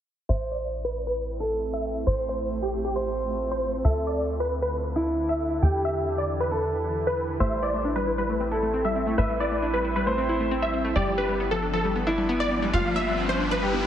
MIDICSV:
0, 0, Header, 1, 7, 480
1, 0, Start_track
1, 0, Key_signature, 0, "minor"
1, 0, Tempo, 444444
1, 314, Time_signature, 4, 2, 24, 8
1, 14976, End_track
2, 0, Start_track
2, 0, Title_t, "Supersaw synth"
2, 0, Program_c, 0, 81
2, 313, Note_on_c, 0, 76, 99
2, 479, Note_off_c, 0, 76, 0
2, 555, Note_on_c, 0, 74, 91
2, 802, Note_off_c, 0, 74, 0
2, 914, Note_on_c, 0, 71, 87
2, 1079, Note_off_c, 0, 71, 0
2, 1155, Note_on_c, 0, 71, 91
2, 1402, Note_off_c, 0, 71, 0
2, 1873, Note_on_c, 0, 76, 92
2, 2121, Note_off_c, 0, 76, 0
2, 2235, Note_on_c, 0, 72, 99
2, 2399, Note_off_c, 0, 72, 0
2, 2475, Note_on_c, 0, 72, 92
2, 2722, Note_off_c, 0, 72, 0
2, 2835, Note_on_c, 0, 67, 84
2, 2999, Note_off_c, 0, 67, 0
2, 3074, Note_on_c, 0, 67, 91
2, 3322, Note_off_c, 0, 67, 0
2, 3795, Note_on_c, 0, 72, 92
2, 4042, Note_off_c, 0, 72, 0
2, 4154, Note_on_c, 0, 76, 100
2, 4319, Note_off_c, 0, 76, 0
2, 4395, Note_on_c, 0, 74, 93
2, 4642, Note_off_c, 0, 74, 0
2, 4754, Note_on_c, 0, 71, 86
2, 4919, Note_off_c, 0, 71, 0
2, 4994, Note_on_c, 0, 71, 90
2, 5241, Note_off_c, 0, 71, 0
2, 5715, Note_on_c, 0, 76, 95
2, 5962, Note_off_c, 0, 76, 0
2, 6075, Note_on_c, 0, 79, 97
2, 6240, Note_off_c, 0, 79, 0
2, 6317, Note_on_c, 0, 76, 94
2, 6563, Note_off_c, 0, 76, 0
2, 6676, Note_on_c, 0, 74, 90
2, 6840, Note_off_c, 0, 74, 0
2, 6916, Note_on_c, 0, 71, 93
2, 7163, Note_off_c, 0, 71, 0
2, 7635, Note_on_c, 0, 71, 97
2, 7882, Note_off_c, 0, 71, 0
2, 7995, Note_on_c, 0, 76, 100
2, 8160, Note_off_c, 0, 76, 0
2, 8236, Note_on_c, 0, 74, 96
2, 8482, Note_off_c, 0, 74, 0
2, 8594, Note_on_c, 0, 71, 90
2, 8759, Note_off_c, 0, 71, 0
2, 8836, Note_on_c, 0, 71, 91
2, 9082, Note_off_c, 0, 71, 0
2, 9555, Note_on_c, 0, 76, 98
2, 9802, Note_off_c, 0, 76, 0
2, 9915, Note_on_c, 0, 76, 99
2, 10080, Note_off_c, 0, 76, 0
2, 10156, Note_on_c, 0, 74, 95
2, 10402, Note_off_c, 0, 74, 0
2, 10515, Note_on_c, 0, 71, 89
2, 10679, Note_off_c, 0, 71, 0
2, 10756, Note_on_c, 0, 71, 95
2, 11002, Note_off_c, 0, 71, 0
2, 11474, Note_on_c, 0, 76, 91
2, 11722, Note_off_c, 0, 76, 0
2, 11833, Note_on_c, 0, 74, 97
2, 11999, Note_off_c, 0, 74, 0
2, 12073, Note_on_c, 0, 71, 95
2, 12321, Note_off_c, 0, 71, 0
2, 12433, Note_on_c, 0, 69, 84
2, 12599, Note_off_c, 0, 69, 0
2, 12673, Note_on_c, 0, 69, 90
2, 12921, Note_off_c, 0, 69, 0
2, 13392, Note_on_c, 0, 74, 97
2, 13641, Note_off_c, 0, 74, 0
2, 13755, Note_on_c, 0, 77, 99
2, 13919, Note_off_c, 0, 77, 0
2, 13995, Note_on_c, 0, 76, 94
2, 14242, Note_off_c, 0, 76, 0
2, 14355, Note_on_c, 0, 72, 90
2, 14519, Note_off_c, 0, 72, 0
2, 14595, Note_on_c, 0, 71, 92
2, 14842, Note_off_c, 0, 71, 0
2, 14976, End_track
3, 0, Start_track
3, 0, Title_t, "Grand piano"
3, 0, Program_c, 1, 0
3, 314, Note_on_c, 1, 72, 92
3, 770, Note_off_c, 1, 72, 0
3, 1514, Note_on_c, 1, 69, 85
3, 2138, Note_off_c, 1, 69, 0
3, 2233, Note_on_c, 1, 72, 87
3, 3098, Note_off_c, 1, 72, 0
3, 3194, Note_on_c, 1, 72, 84
3, 4058, Note_off_c, 1, 72, 0
3, 4154, Note_on_c, 1, 69, 90
3, 4610, Note_off_c, 1, 69, 0
3, 5354, Note_on_c, 1, 64, 85
3, 5978, Note_off_c, 1, 64, 0
3, 6073, Note_on_c, 1, 67, 86
3, 6938, Note_off_c, 1, 67, 0
3, 7034, Note_on_c, 1, 69, 86
3, 7898, Note_off_c, 1, 69, 0
3, 7994, Note_on_c, 1, 72, 91
3, 8450, Note_off_c, 1, 72, 0
3, 9194, Note_on_c, 1, 69, 85
3, 9818, Note_off_c, 1, 69, 0
3, 9913, Note_on_c, 1, 71, 86
3, 10778, Note_off_c, 1, 71, 0
3, 10873, Note_on_c, 1, 72, 86
3, 11738, Note_off_c, 1, 72, 0
3, 11833, Note_on_c, 1, 67, 90
3, 12290, Note_off_c, 1, 67, 0
3, 13033, Note_on_c, 1, 64, 87
3, 13658, Note_off_c, 1, 64, 0
3, 13753, Note_on_c, 1, 65, 91
3, 14617, Note_off_c, 1, 65, 0
3, 14712, Note_on_c, 1, 67, 87
3, 14976, Note_off_c, 1, 67, 0
3, 14976, End_track
4, 0, Start_track
4, 0, Title_t, "Ambient pad"
4, 0, Program_c, 2, 92
4, 313, Note_on_c, 2, 60, 71
4, 313, Note_on_c, 2, 64, 88
4, 314, Note_on_c, 2, 57, 82
4, 2214, Note_off_c, 2, 64, 0
4, 2215, Note_off_c, 2, 60, 0
4, 2233, Note_on_c, 2, 65, 90
4, 2234, Note_on_c, 2, 60, 77
4, 4116, Note_off_c, 2, 57, 0
4, 4135, Note_off_c, 2, 60, 0
4, 4135, Note_off_c, 2, 65, 0
4, 4154, Note_on_c, 2, 50, 82
4, 4155, Note_on_c, 2, 62, 75
4, 4155, Note_on_c, 2, 64, 74
4, 4155, Note_on_c, 2, 69, 88
4, 6055, Note_off_c, 2, 50, 0
4, 6055, Note_off_c, 2, 62, 0
4, 6055, Note_off_c, 2, 69, 0
4, 6075, Note_on_c, 2, 67, 73
4, 6075, Note_on_c, 2, 71, 89
4, 6076, Note_on_c, 2, 52, 84
4, 7956, Note_off_c, 2, 64, 0
4, 7975, Note_off_c, 2, 67, 0
4, 7975, Note_off_c, 2, 71, 0
4, 7976, Note_off_c, 2, 52, 0
4, 7995, Note_on_c, 2, 60, 74
4, 7995, Note_on_c, 2, 64, 89
4, 7996, Note_on_c, 2, 57, 81
4, 11797, Note_off_c, 2, 57, 0
4, 11797, Note_off_c, 2, 60, 0
4, 11797, Note_off_c, 2, 64, 0
4, 11834, Note_on_c, 2, 62, 75
4, 11834, Note_on_c, 2, 71, 93
4, 11835, Note_on_c, 2, 53, 76
4, 11835, Note_on_c, 2, 55, 82
4, 14976, Note_off_c, 2, 53, 0
4, 14976, Note_off_c, 2, 55, 0
4, 14976, Note_off_c, 2, 62, 0
4, 14976, Note_off_c, 2, 71, 0
4, 14976, End_track
5, 0, Start_track
5, 0, Title_t, "Synth pluck"
5, 0, Program_c, 3, 84
5, 7995, Note_on_c, 3, 57, 100
5, 8023, Note_off_c, 3, 57, 0
5, 8116, Note_on_c, 3, 55, 73
5, 8162, Note_off_c, 3, 55, 0
5, 8236, Note_on_c, 3, 64, 72
5, 8305, Note_off_c, 3, 64, 0
5, 8356, Note_on_c, 3, 57, 69
5, 8425, Note_off_c, 3, 57, 0
5, 8476, Note_on_c, 3, 62, 79
5, 8545, Note_off_c, 3, 62, 0
5, 8596, Note_on_c, 3, 55, 72
5, 8665, Note_off_c, 3, 55, 0
5, 8716, Note_on_c, 3, 64, 73
5, 8761, Note_off_c, 3, 64, 0
5, 8836, Note_on_c, 3, 55, 74
5, 8882, Note_off_c, 3, 55, 0
5, 8956, Note_on_c, 3, 57, 81
5, 9002, Note_off_c, 3, 57, 0
5, 9075, Note_on_c, 3, 60, 75
5, 9121, Note_off_c, 3, 60, 0
5, 9196, Note_on_c, 3, 64, 96
5, 9242, Note_off_c, 3, 64, 0
5, 9316, Note_on_c, 3, 57, 77
5, 9385, Note_off_c, 3, 57, 0
5, 9436, Note_on_c, 3, 60, 96
5, 9505, Note_off_c, 3, 60, 0
5, 9556, Note_on_c, 3, 55, 74
5, 9625, Note_off_c, 3, 55, 0
5, 9675, Note_on_c, 3, 60, 76
5, 9745, Note_off_c, 3, 60, 0
5, 9796, Note_on_c, 3, 57, 95
5, 9841, Note_off_c, 3, 57, 0
5, 9915, Note_on_c, 3, 57, 97
5, 9943, Note_off_c, 3, 57, 0
5, 10035, Note_on_c, 3, 55, 75
5, 10081, Note_off_c, 3, 55, 0
5, 10155, Note_on_c, 3, 64, 73
5, 10224, Note_off_c, 3, 64, 0
5, 10275, Note_on_c, 3, 57, 73
5, 10344, Note_off_c, 3, 57, 0
5, 10395, Note_on_c, 3, 62, 82
5, 10464, Note_off_c, 3, 62, 0
5, 10515, Note_on_c, 3, 55, 74
5, 10584, Note_off_c, 3, 55, 0
5, 10635, Note_on_c, 3, 64, 74
5, 10681, Note_off_c, 3, 64, 0
5, 10755, Note_on_c, 3, 55, 78
5, 10801, Note_off_c, 3, 55, 0
5, 10875, Note_on_c, 3, 57, 81
5, 10921, Note_off_c, 3, 57, 0
5, 10995, Note_on_c, 3, 60, 79
5, 11041, Note_off_c, 3, 60, 0
5, 11115, Note_on_c, 3, 64, 100
5, 11161, Note_off_c, 3, 64, 0
5, 11235, Note_on_c, 3, 57, 76
5, 11305, Note_off_c, 3, 57, 0
5, 11354, Note_on_c, 3, 60, 100
5, 11424, Note_off_c, 3, 60, 0
5, 11474, Note_on_c, 3, 55, 76
5, 11544, Note_off_c, 3, 55, 0
5, 11595, Note_on_c, 3, 60, 74
5, 11664, Note_off_c, 3, 60, 0
5, 11714, Note_on_c, 3, 57, 96
5, 11760, Note_off_c, 3, 57, 0
5, 11834, Note_on_c, 3, 55, 97
5, 11862, Note_off_c, 3, 55, 0
5, 11954, Note_on_c, 3, 53, 76
5, 12001, Note_off_c, 3, 53, 0
5, 12074, Note_on_c, 3, 62, 72
5, 12144, Note_off_c, 3, 62, 0
5, 12194, Note_on_c, 3, 55, 72
5, 12264, Note_off_c, 3, 55, 0
5, 12313, Note_on_c, 3, 59, 83
5, 12384, Note_off_c, 3, 59, 0
5, 12434, Note_on_c, 3, 53, 77
5, 12504, Note_off_c, 3, 53, 0
5, 12554, Note_on_c, 3, 62, 74
5, 12600, Note_off_c, 3, 62, 0
5, 12673, Note_on_c, 3, 53, 75
5, 12720, Note_off_c, 3, 53, 0
5, 12793, Note_on_c, 3, 55, 80
5, 12840, Note_off_c, 3, 55, 0
5, 12913, Note_on_c, 3, 59, 76
5, 12960, Note_off_c, 3, 59, 0
5, 13034, Note_on_c, 3, 62, 98
5, 13081, Note_off_c, 3, 62, 0
5, 13153, Note_on_c, 3, 55, 78
5, 13224, Note_off_c, 3, 55, 0
5, 13273, Note_on_c, 3, 59, 100
5, 13344, Note_off_c, 3, 59, 0
5, 13393, Note_on_c, 3, 53, 73
5, 13464, Note_off_c, 3, 53, 0
5, 13513, Note_on_c, 3, 59, 77
5, 13584, Note_off_c, 3, 59, 0
5, 13634, Note_on_c, 3, 55, 94
5, 13681, Note_off_c, 3, 55, 0
5, 13753, Note_on_c, 3, 55, 99
5, 13782, Note_off_c, 3, 55, 0
5, 13873, Note_on_c, 3, 53, 75
5, 13920, Note_off_c, 3, 53, 0
5, 13994, Note_on_c, 3, 62, 73
5, 14064, Note_off_c, 3, 62, 0
5, 14114, Note_on_c, 3, 55, 72
5, 14184, Note_off_c, 3, 55, 0
5, 14235, Note_on_c, 3, 59, 81
5, 14304, Note_off_c, 3, 59, 0
5, 14354, Note_on_c, 3, 53, 73
5, 14424, Note_off_c, 3, 53, 0
5, 14474, Note_on_c, 3, 62, 77
5, 14521, Note_off_c, 3, 62, 0
5, 14594, Note_on_c, 3, 53, 75
5, 14641, Note_off_c, 3, 53, 0
5, 14715, Note_on_c, 3, 55, 81
5, 14761, Note_off_c, 3, 55, 0
5, 14834, Note_on_c, 3, 59, 75
5, 14881, Note_off_c, 3, 59, 0
5, 14976, End_track
6, 0, Start_track
6, 0, Title_t, "Analog synth bass"
6, 0, Program_c, 4, 38
6, 314, Note_on_c, 4, 33, 78
6, 2210, Note_off_c, 4, 33, 0
6, 2233, Note_on_c, 4, 33, 84
6, 4130, Note_off_c, 4, 33, 0
6, 4153, Note_on_c, 4, 38, 83
6, 6050, Note_off_c, 4, 38, 0
6, 6075, Note_on_c, 4, 40, 83
6, 7971, Note_off_c, 4, 40, 0
6, 7994, Note_on_c, 4, 33, 85
6, 9890, Note_off_c, 4, 33, 0
6, 9914, Note_on_c, 4, 33, 80
6, 11810, Note_off_c, 4, 33, 0
6, 11833, Note_on_c, 4, 31, 85
6, 13730, Note_off_c, 4, 31, 0
6, 13753, Note_on_c, 4, 31, 82
6, 14976, Note_off_c, 4, 31, 0
6, 14976, End_track
7, 0, Start_track
7, 0, Title_t, "Riser"
7, 0, Program_c, 5, 103
7, 11833, Note_on_c, 5, 60, 71
7, 14976, Note_off_c, 5, 60, 0
7, 14976, End_track
0, 0, End_of_file